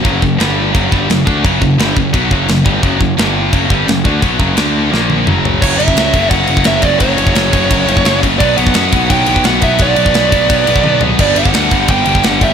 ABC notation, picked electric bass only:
X:1
M:4/4
L:1/8
Q:1/4=172
K:none
V:1 name="Picked electric bass" clef=bass
^F,,, F,,, G,,,2 F,,, G,,, F,,, D,, | ^F,,, F,,, G,,, F,,, B,,, F,,, F,,, G,,, | ^F,,, F,,, G,,,2 F,,, G,,, F,,, D,, | B,,, ^F,,, D,,2 ^A,,,2 F,,,2 |
^F,,, F,,, ^C,, F,,, F,,, F,,, F,,, F,,, | ^F,,, F,,, F,,, F,,, F,,, F,,, F,,, F,,, | B,,, B,,, ^F,, B,,, B,,, B,,, B,,, B,,, | B,,, B,,, B,,, B,,, B,,, B,,, B,,, B,,, |
G,,, G,,, D,, G,,, G,,, G,,, G,,, G,,, |]